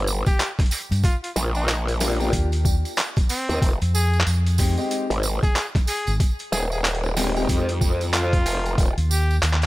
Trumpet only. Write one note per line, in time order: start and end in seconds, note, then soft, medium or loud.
0.27 0.50 G4 medium
1.04 1.16 F4 medium
1.23 1.31 F4 medium
1.56 1.79 D#4 loud
3.30 3.70 C4 loud
3.95 4.21 G#4 loud
5.43 5.66 G#4 medium
5.88 6.14 G#4 medium
6.52 6.65 G#4 medium
6.72 6.80 G#4 medium
8.13 8.86 F4 loud
9.10 9.37 G4 loud